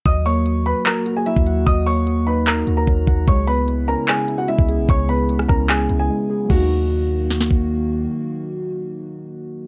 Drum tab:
CC |----------------|----------------|----------------|----------------|
HH |x-o-x---x-x-x-x-|x-o-x---x-x-x-x-|x-o-x---x-x-x-x-|x-o-x---x-x-----|
CP |--------x-------|--------x-------|--------x-------|--------x-------|
SD |----------------|----------------|----------------|-----rr---------|
BD |o------------o--|o-----------o-o-|o------------o--|o-----o---------|

CC |x---------------|----------------|
HH |----------------|----------------|
CP |----------------|----------------|
SD |--------oo------|----------------|
BD |o---------o-----|----------------|